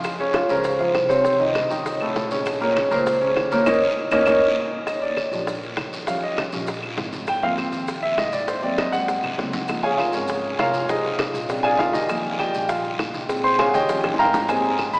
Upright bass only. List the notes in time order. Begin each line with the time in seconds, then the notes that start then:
Already playing: F#2
0.49 C#2
0.95 C2
1.71 F2
2.16 A#1
2.91 C#2
3.36 D#2
3.66 D#2
4.11 D#2
4.26 D#2
5.32 A#1
5.77 D#2
6.53 A#1
6.97 G#1
7.72 D#2
8.18 G#1
8.94 G#2
9.38 C#2
10.14 G#1
10.59 F1
11.34 A#1
11.79 D#2
12.54 A#1
12.99 A#1
13.74 D#2
14.19 G#1
14.93 D#2